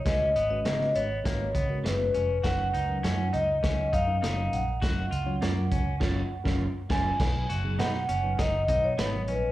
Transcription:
<<
  \new Staff \with { instrumentName = "Vibraphone" } { \time 4/4 \key fis \major \tempo 4 = 101 dis''8. dis''8. cis''4. b'4 | fis''4. dis''4 eis''4 fis''8~ | fis''2. r8 gis''8~ | gis''8 r8 fis''4 dis''8. cis''8. b'8 | }
  \new Staff \with { instrumentName = "Clean electric guitar" } { \time 4/4 \key fis \major r4 <b fis' gis' cis''>8 r4. <b fis' gis' cis''>8 r8 | r4 <ais dis' fis' cis''>8 r4. <ais dis' fis' cis''>8 r8 | r4 <cis' eis' ais' cis''>8 r8 <cis' eis' ais' cis''>8 r16 <cis' eis' ais' cis''>8 r16 <cis' eis' ais' cis''>8 | r4 <b dis' fis' b'>8 r4. <b dis' fis' b'>8 r8 | }
  \new Staff \with { instrumentName = "Tine electric piano" } { \time 4/4 \key fis \major <gis cis' fis' b'>8 r16 <gis cis' fis' b'>16 r16 <gis cis' fis' b'>8 r16 <gis cis' fis' b'>8 r16 <gis cis' fis' ais'>16 r16 <gis cis' fis' b'>8 r16 | <fis cis' dis' ais'>8 r16 <fis cis' dis' ais'>16 r16 <fis cis' dis' eis'>8 r16 <fis cis' dis' ais'>8 r16 <fis cis' dis' ais'>16 r16 <fis cis' dis' ais'>8 r16 | <fis cis' eis' ais'>8 r16 <fis cis' eis' cis''>16 r16 <fis cis' eis' ais'>8 r16 <fis cis' eis' cis''>8 r16 <fis cis' eis' ais'>8 r16 <fis cis' eis' ais'>8 | <fis b dis' b'>8 r16 <fis b dis' gis'>8 r8 <fis b dis' b'>8 r16 <fis b dis' b'>8 r16 <fis b dis' ais'>8 r16 | }
  \new Staff \with { instrumentName = "Clean electric guitar" } { \time 4/4 \key fis \major cis'8 b8 ais8 b8 ais8 b8 r8 cis'8 | fis'8 dis'8 cis'8 dis'8 cis'8 dis'8 dis'4 | fis'8 eis'8 ais8 cis'8 r2 | r8 fis'8 dis'8 cis'8 dis'8 dis'8 b8 cis'8 | }
  \new Staff \with { instrumentName = "Fingered electric bass" } { \clef bass \time 4/4 \key fis \major cis,8 gis,,8 cis8 gis,,8 gis,,8 cis8 fis,,8 eis,,8 | fis,,8 cis,8 fis,8 cis,8 cis,8 fis,8 fis,,8 ais,,8 | fis,,8 cis,8 fis,8 cis,8 fis,,8 r16 fis,,8 r16 fis,,8 | b,,8 fis,,8 b,8 fis,,8 fis,,8 b,8 gis,,8 ais,,8 | }
  \new DrumStaff \with { instrumentName = "Drums" } \drummode { \time 4/4 <hh bd sn>8 hh8 <hh sn>16 sn16 hh8 <hh bd sn>8 <hh bd>8 <hh sn>8 hh8 | <hh bd sn>8 hh8 <hh sn>8 hh8 <hh bd sn>8 <hh bd>8 <hh sn>8 hh8 | <hh bd sn>8 hh8 <hh sn>8 <hh bd>8 <cymc bd sn>8. <bd sn>16 r8 <cymc bd sn>8 | <cymc bd sn>8 hh8 <hh sn>16 sn16 hh8 <hh bd sn>8 <hh bd>8 <hh sn>8 hh8 | }
>>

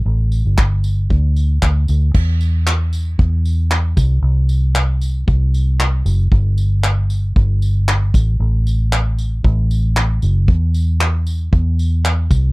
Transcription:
<<
  \new Staff \with { instrumentName = "Fingered electric bass" } { \clef bass \time 4/4 \key c \lydian \tempo 4 = 115 a,,8. g,,4~ g,,16 d,4 d,8 d,8 | e,2 e,4. c,8 | c,2 c,4. fis,,8 | g,,2 g,,4. a,,8 |
a,,2 a,,4. fis,,8 | e,2 e,4. c,8 | }
  \new DrumStaff \with { instrumentName = "Drums" } \drummode { \time 4/4 r8 tamb8 <hc bd>8 tamb8 bd8 tamb8 <hc bd>8 tamb8 | <cymc bd>8 tamb8 hc8 tamb8 bd8 tamb8 hc8 <bd tamb>8 | r8 tamb8 hc8 tamb8 bd8 tamb8 hc8 tamb8 | bd8 tamb8 hc8 tamb8 bd8 tamb8 hc8 <bd tamb>8 |
r8 tamb8 hc8 tamb8 bd8 tamb8 hc8 tamb8 | bd8 tamb8 hc8 tamb8 bd8 tamb8 hc8 <bd tamb>8 | }
>>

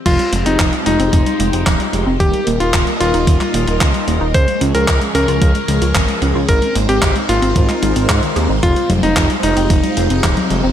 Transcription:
<<
  \new Staff \with { instrumentName = "Electric grand piano" } { \time 4/4 \key f \minor \tempo 4 = 112 f'8 r16 ees'8 r16 ees'2~ ees'16 r16 | g'8 r16 f'8 r16 f'2~ f'16 r16 | c''8 r16 bes'8 r16 bes'2~ bes'16 r16 | bes'8 r16 g'8 r16 f'2~ f'16 r16 |
f'8 r16 ees'8 r16 ees'2~ ees'16 r16 | }
  \new Staff \with { instrumentName = "String machine" } { \time 4/4 \key f \minor << { <aes c' c''>1 | <g bes ees''>1 | <f aes des''>1 | <aes c' c''>1~ |
<aes c' c''>1 | } \\ { <f' g'>1 | <ees' bes'>1 | <des' aes'>1 | <ees' bes'>1 |
<f' g'>1 | } >> }
  \new Staff \with { instrumentName = "Synth arpeggio sound" } { \clef bass \time 4/4 \key f \minor f16 g16 aes16 c'16 f16 g16 aes16 c'16 f16 g16 aes16 c'16 f16 g16 aes16 c'16 | ees16 g16 bes16 ees'16 ees16 g16 bes16 ees'16 ees16 g16 bes16 ees'16 ees16 g16 bes16 ees'16 | f16 aes16 des'16 f'16 f16 aes16 des'16 f'16 f16 aes16 des'16 f'16 f16 aes16 des'16 f'16 | ees16 aes16 bes16 c'16 ees16 aes16 bes16 c'16 ees16 aes16 aes16 c'16 ees'16 ees16 aes'16 aes16 |
f16 g16 aes16 c'16 f16 g16 aes16 c'16 f16 g16 aes16 c'16 f16 g16 aes16 c'16 | }
  \new Staff \with { instrumentName = "Analog synth bass" } { \clef bass \time 4/4 \key f \minor f,,16 r16 f,,16 f,,16 f,,16 r16 f,,16 f,,16 f,,16 r16 f,,16 f,,16 ees,,16 r16 f,,16 f,,16 | ees,,16 r16 ees,,16 ees,,16 ees,,16 r16 ees,,16 ees,,16 ees,,16 r16 ees,,16 ees,,16 des,16 r16 ees,,16 ees,,16 | des,16 r16 des,16 des,16 des,16 r16 des,16 des,16 des,16 r16 des,16 des,16 aes,,16 r16 des,16 des,16 | aes,,16 r16 aes,,16 aes,,16 aes,,16 r16 aes,,16 aes,,16 aes,,16 r16 aes,,16 aes,,16 aes,16 r16 ees,16 aes,,16 |
f,,16 r16 f,,16 f,,16 f,,16 r16 f,,16 f,,16 f,,16 r16 f,,16 f,,16 ees,,16 r16 f,,16 f,,16 | }
  \new DrumStaff \with { instrumentName = "Drums" } \drummode { \time 4/4 <cymc hh bd>16 hh16 hh16 hh16 <hc hh bd>16 hh16 hh16 hh16 <hh bd>16 hh16 hh16 hh16 <hc hh bd>16 hh16 hh8 | <hh bd>16 hh16 hh16 hh16 <hc hh bd>16 hh16 hh16 hh16 <hh bd>16 <hc hh>16 hh16 hh16 <hc hh bd>16 hh16 hh8 | <hh bd>16 hh16 hh16 hh16 <hc hh bd>16 hh16 hh16 hh16 <hh bd>16 hh16 hh16 hh16 <hc hh bd>16 hh16 hh8 | <hh bd>16 hh16 hh16 hh16 <hc hh bd>16 hh16 hh16 hh16 <hh bd>16 <hc hh>16 hh16 hh16 <hc hh bd>16 hh16 hh8 |
<hh bd>16 hh16 <cgho hh>16 hh16 <hc hh bd>16 hh16 hh16 hh16 <hh bd>16 hh16 hh16 hh16 <hc hh bd>16 <cgho hh>16 hh8 | }
>>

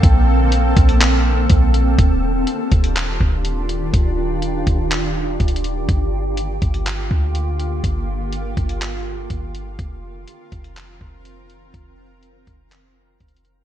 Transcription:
<<
  \new Staff \with { instrumentName = "Ambient pad" } { \time 4/4 \key g \minor \tempo 4 = 123 << { a'1 | g'1~ | g'1~ | g'1~ |
g'1 | bes'1~ | bes'1 | } \\ { <d bes c'>1 | <ees d' f'>1~ | <ees d' f'>1 | <d bes f'>1~ |
<d bes f'>1 | <ees c' f'>1~ | <ees c' f'>1 | } >> }
  \new Staff \with { instrumentName = "808-style bass" } { \clef bass \time 4/4 \key g \minor bes,,4. bes,,4. bes,,4 | ees,,4 r8 ees,,4 ees,,4. | ees,,4. ees,,4. ees,,4 | g,,4. g,,4 d,4. |
g,,4. g,,4. g,,4 | f,,4 r8 f,,4 f,,4. | f,,4. f,,4. f,,4 | }
  \new DrumStaff \with { instrumentName = "Drums" } \drummode { \time 4/4 <hh bd>4 hh8 <hh bd>16 hh16 <hc hh>4 <hh bd>8 hh8 | <hh bd>4 hh8 <hh bd>16 hh16 <hc hh>8 bd8 hh8 hh8 | <hh bd>4 hh8 <hh bd>8 <hc hh>4 \tuplet 3/2 { <hh bd>16 hh16 hh16 hh16 r16 r16 } | <hh bd>4 hh8 <hh bd>16 hh16 <hc hh>8 bd8 hh8 hh8 |
<hh bd>4 hh8 <hh bd>16 hh16 <hc hh>4 <hh bd>8 hh8 | <hh bd>4 hh8 <hh bd>16 hh16 <hc hh>8 bd8 hh8 hh8 | <hh bd>4 hh8 <hh bd>8 <hc hh>4 \tuplet 3/2 { <hh bd>16 hh16 hh16 hh16 r16 r16 } | }
>>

